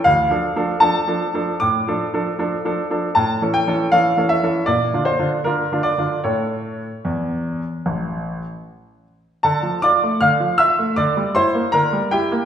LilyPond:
\new Staff \with { instrumentName = "Grand piano" } { \time 4/4 \key d \minor \tempo 4 = 78 << { f''4 a''4 d'''4 r4 | a''8 g''8 f''8 e''8 d''8 c''8 bes'8 d''8 | cis''2.~ cis''8 r8 | <a' a''>8 <d'' d'''>8 <f'' f'''>8 <e'' e'''>8 <d'' d'''>8 <c'' c'''>8 <bes' bes''>8 <g' g''>8 | } \\ { \tuplet 3/2 { d,8 <f d' a'>8 <f d' a'>8 <f d' a'>8 <f d' a'>8 <f d' a'>8 a,8 <f d' a'>8 <f d' a'>8 <f d' a'>8 <f d' a'>8 <f d' a'>8 } | \tuplet 3/2 { a,8 <e cis' a'>8 <e cis' a'>8 <e cis' a'>8 <e cis' a'>8 <e cis' a'>8 bes,8 <d d' f'>8 <d d' f'>8 <d d' f'>8 <d d' f'>8 <d d' f'>8 } | <a, a a'>4 e,4 a,,4 r4 | d16 f16 f'16 a16 d16 f16 f'16 a16 d16 g16 e'16 bes16 d16 g16 e'16 bes16 | } >> }